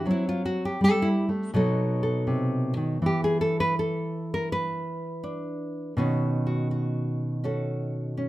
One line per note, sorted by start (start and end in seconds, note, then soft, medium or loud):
0.05 0.80 F#3 medium
0.05 1.51 C4 soft
0.11 0.28 E4 medium
0.29 0.45 F4 medium
0.45 0.63 F#4 medium
0.65 0.79 G4 medium
0.81 1.28 G3 medium
0.81 1.07 A4 medium
1.02 1.28 E4 medium
1.29 1.54 A3 medium
1.54 2.98 B2 medium
1.54 3.05 F#3 medium
1.54 3.44 B3 medium
1.54 2.99 D#4 medium
1.54 2.02 A4 medium
2.03 2.98 A4 medium
2.27 2.76 C3 medium
2.77 3.01 D#3 medium
3.02 5.93 E3 medium
3.06 3.24 G4 medium
3.24 3.41 G#4 medium
3.41 3.58 A4 medium
3.60 3.74 B4 medium
3.79 4.33 A4 medium
4.34 4.48 A#4 medium
4.52 6.71 B4 medium
5.23 5.94 D4 medium
5.97 8.29 B2 medium
5.97 8.29 D#3 soft
5.97 7.42 C#4 soft
5.97 6.45 F#4 soft
6.47 6.70 F#4 soft
6.71 7.43 F#4 soft
7.44 8.16 C#4 soft
7.44 8.29 F#4 soft
7.44 8.29 A4 soft
8.17 8.29 C#4 soft